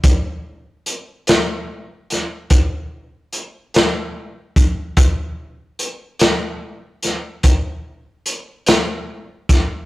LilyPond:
\new DrumStaff \with { instrumentName = "Drums" } \drummode { \time 12/8 \tempo 4. = 49 <hh bd>4 hh8 <hh sn>4 <hh sn>8 <hh bd>4 hh8 <hh sn>4 <hh bd>8 | <hh bd>4 hh8 <hh sn>4 <hh sn>8 <hh bd>4 hh8 <hh sn>4 <hh bd sn>8 | }